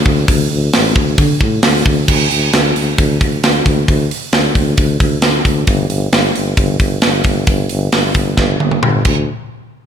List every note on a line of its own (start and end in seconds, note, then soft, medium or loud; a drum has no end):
0.05 0.23 D2 medium
0.05 kick medium
0.28 0.46 D2 loud
0.28 kick loud
0.28 open hi-hat medium
0.51 0.69 D2 medium
0.73 0.92 A1 loud
0.73 snare loud
0.73 open hi-hat medium
0.96 1.13 D2 medium
0.96 kick medium
1.18 1.36 D3 medium
1.18 kick loud
1.18 open hi-hat medium
1.41 1.59 A2 medium
1.41 kick loud
1.63 1.81 D2 medium
1.63 snare loud
1.63 open hi-hat medium
1.85 2.08 D2 medium
1.85 kick medium
2.08 2.26 D2 loud
2.08 kick loud
2.08 crash loud
2.31 2.48 D2 medium
2.31 open hi-hat medium
2.53 2.71 D2 loud
2.53 snare loud
2.53 open hi-hat medium
2.75 2.93 D2 medium
2.75 open hi-hat medium
2.98 3.16 D2 loud
2.98 kick loud
2.98 open hi-hat medium
3.21 3.38 D2 medium
3.21 kick medium
3.21 open hi-hat medium
3.43 3.61 D2 medium
3.43 snare loud
3.43 open hi-hat medium
3.65 3.83 D2 medium
3.65 kick medium
3.65 open hi-hat medium
3.88 4.06 D2 loud
3.88 kick loud
3.88 open hi-hat medium
4.11 open hi-hat medium
4.32 4.50 D2 medium
4.32 snare loud
4.32 open hi-hat medium
4.55 4.73 D2 medium
4.55 kick medium
4.55 open hi-hat medium
4.77 4.95 D2 medium
4.77 kick loud
4.77 open hi-hat medium
5.00 5.18 D2 medium
5.00 kick medium
5.00 open hi-hat medium
5.21 5.39 D2 medium
5.21 snare loud
5.21 open hi-hat medium
5.45 5.63 D2 medium
5.45 kick medium
5.45 open hi-hat medium
5.67 5.85 G1 medium
5.67 kick loud
5.67 open hi-hat medium
5.89 6.07 G1 medium
5.89 open hi-hat medium
6.11 6.30 G1 loud
6.11 snare loud
6.11 open hi-hat medium
6.35 6.53 G1 medium
6.35 open hi-hat medium
6.57 6.75 G1 medium
6.57 kick loud
6.57 open hi-hat medium
6.79 6.97 G1 medium
6.79 kick medium
6.79 open hi-hat medium
7.02 7.20 G1 medium
7.02 snare loud
7.02 open hi-hat medium
7.24 7.43 G1 medium
7.24 kick medium
7.24 open hi-hat medium
7.47 7.65 G1 medium
7.47 kick loud
7.47 open hi-hat medium
7.69 7.88 G1 medium
7.69 open hi-hat medium
7.92 8.10 G1 medium
7.92 snare loud
7.92 open hi-hat medium
8.15 8.33 G1 medium
8.15 kick medium
8.15 open hi-hat medium
8.37 8.56 G1 medium
8.37 kick medium
8.37 snare medium
8.60 8.78 G1 medium
8.60 high tom medium
8.71 high tom medium
8.82 9.00 G1 medium
8.82 mid tom medium
9.05 9.26 D2 loud
9.05 kick loud
9.05 crash medium